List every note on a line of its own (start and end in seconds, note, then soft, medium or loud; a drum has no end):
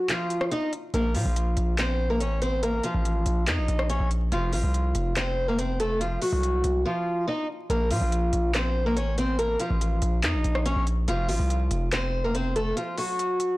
0.09 0.49 F3 medium
0.09 0.49 F4 medium
0.09 clap loud
0.09 closed hi-hat medium
0.30 closed hi-hat medium
0.41 cross-stick loud
0.52 0.70 D#4 medium
0.52 0.71 D#5 medium
0.52 closed hi-hat medium
0.73 closed hi-hat medium
0.94 1.16 A#1 loud
0.94 1.13 A#3 medium
0.94 1.13 A#4 medium
0.94 closed hi-hat medium
1.15 1.25 A#2 loud
1.15 1.75 F3 medium
1.15 1.74 F4 medium
1.15 open hi-hat medium
1.26 1.56 A#1 loud
1.36 closed hi-hat medium
1.57 2.22 A#1 loud
1.57 closed hi-hat medium
1.78 2.09 C4 medium
1.78 2.08 C5 medium
1.78 clap loud
1.78 closed hi-hat medium
2.10 2.20 A#3 medium
2.10 2.19 A#4 medium
2.20 2.81 A1 loud
2.20 2.40 C#4 medium
2.20 2.39 C#5 medium
2.20 closed hi-hat medium
2.42 2.61 C4 medium
2.42 2.61 C5 medium
2.42 closed hi-hat medium
2.63 2.82 A#3 medium
2.63 2.82 A#4 medium
2.63 closed hi-hat medium
2.84 3.44 F3 medium
2.84 3.43 F4 medium
2.84 closed hi-hat medium
2.94 3.25 A1 loud
3.05 closed hi-hat medium
3.26 3.49 A#1 loud
3.26 closed hi-hat medium
3.47 3.59 F2 loud
3.47 3.87 D#4 medium
3.47 3.87 D#5 medium
3.47 clap loud
3.47 closed hi-hat medium
3.58 3.68 A#1 loud
3.68 3.99 A#1 loud
3.68 closed hi-hat medium
3.79 cross-stick loud
3.90 4.08 C#4 medium
3.90 4.09 C#5 medium
3.90 closed hi-hat medium
4.00 4.31 A#1 loud
4.11 closed hi-hat medium
4.32 4.54 F1 loud
4.32 4.51 F3 medium
4.32 4.51 F4 medium
4.32 closed hi-hat medium
4.53 4.63 A1 loud
4.53 5.13 F3 medium
4.53 5.13 F4 medium
4.53 open hi-hat medium
4.64 4.94 C2 loud
4.74 closed hi-hat medium
4.95 6.18 F1 loud
4.95 closed hi-hat medium
5.16 5.47 C4 medium
5.16 5.46 C5 medium
5.16 clap loud
5.16 closed hi-hat medium
5.48 5.58 A#3 medium
5.48 5.58 A#4 medium
5.59 5.78 C4 medium
5.59 5.77 C5 medium
5.59 closed hi-hat medium
5.80 5.99 A3 medium
5.80 5.99 A4 medium
5.80 closed hi-hat medium
6.01 6.20 F3 medium
6.01 6.20 F4 medium
6.01 closed hi-hat medium
6.22 6.82 F#3 medium
6.22 6.81 F#4 medium
6.22 open hi-hat medium
6.33 6.63 C2 loud
6.43 closed hi-hat medium
6.64 6.84 C2 loud
6.64 closed hi-hat medium
6.85 7.26 F3 medium
6.85 7.25 F4 medium
7.28 7.46 D#4 medium
7.28 7.47 D#5 medium
7.70 7.92 A#1 loud
7.70 7.89 A#3 medium
7.70 7.89 A#4 medium
7.70 closed hi-hat medium
7.91 8.01 A#2 loud
7.91 8.51 F3 medium
7.91 8.50 F4 medium
7.91 open hi-hat medium
8.01 8.32 A#1 loud
8.12 closed hi-hat medium
8.33 8.98 A#1 loud
8.33 closed hi-hat medium
8.54 8.85 C4 medium
8.54 8.84 C5 medium
8.54 clap loud
8.54 closed hi-hat medium
8.86 8.96 A#3 medium
8.86 8.95 A#4 medium
8.96 9.57 A1 loud
8.96 9.16 C#4 medium
8.96 9.15 C#5 medium
8.96 closed hi-hat medium
9.18 9.37 C4 medium
9.18 9.37 C5 medium
9.18 closed hi-hat medium
9.39 9.58 A#3 medium
9.39 9.58 A#4 loud
9.39 closed hi-hat medium
9.60 10.20 F3 medium
9.60 10.19 F4 medium
9.60 closed hi-hat medium
9.70 10.01 A1 loud
9.81 closed hi-hat medium
10.02 10.25 A#1 loud
10.02 closed hi-hat medium
10.23 10.35 F2 loud
10.23 10.63 D#4 medium
10.23 10.63 D#5 medium
10.23 clap loud
10.23 closed hi-hat medium
10.34 10.44 A#1 loud
10.44 10.75 A#1 loud
10.44 closed hi-hat medium
10.55 cross-stick loud
10.66 10.84 C#4 loud
10.66 10.85 C#5 medium
10.66 closed hi-hat medium
10.76 11.07 A#1 loud
10.87 closed hi-hat medium
11.08 11.31 F1 loud
11.08 11.27 F3 medium
11.08 11.27 F4 medium
11.08 closed hi-hat medium
11.29 11.39 A1 loud
11.29 11.89 F3 medium
11.29 11.89 F4 medium
11.29 open hi-hat medium
11.40 11.70 C2 loud
11.50 closed hi-hat medium
11.71 12.73 F1 loud
11.71 closed hi-hat medium
11.92 12.23 C4 medium
11.92 12.22 C5 medium
11.92 clap loud
11.92 closed hi-hat medium
12.24 12.34 A#3 medium
12.24 12.34 A#4 medium
12.35 12.54 C4 medium
12.35 12.53 C5 medium
12.35 closed hi-hat medium
12.56 12.75 A3 medium
12.56 12.75 A4 medium
12.56 closed hi-hat medium
12.77 12.96 F3 medium
12.77 12.96 F4 medium
12.77 closed hi-hat medium
12.98 13.57 F#3 medium
12.98 13.57 F#4 medium
12.98 open hi-hat medium
13.19 closed hi-hat medium
13.40 closed hi-hat medium